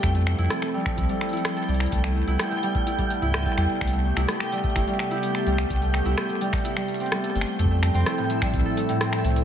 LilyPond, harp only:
\new Staff \with { instrumentName = "Harp" } { \time 4/4 \key f \lydian \tempo 4 = 127 a16 a16 a16 e'16 a16 a16 g16 a16 e'16 g16 a16 e'16 r16 a'16 g16 r16 | a16 a16 a16 e'16 a16 a16 g16 a16 e'16 g16 a16 e'16 r16 a'16 g16 r16 | a16 a16 a16 e'16 a16 a16 g16 a16 e'16 g16 a16 e'16 r16 a'16 g16 r16 | a16 a16 a16 e'16 a16 a16 g16 a16 e'16 g16 a16 c'16 g16 a'16 a16 r16 |
a16 a16 a16 c'16 a16 a,16 a16 g16 r16 a'16 a16 a,16 c'16 r16 a16 r16 | }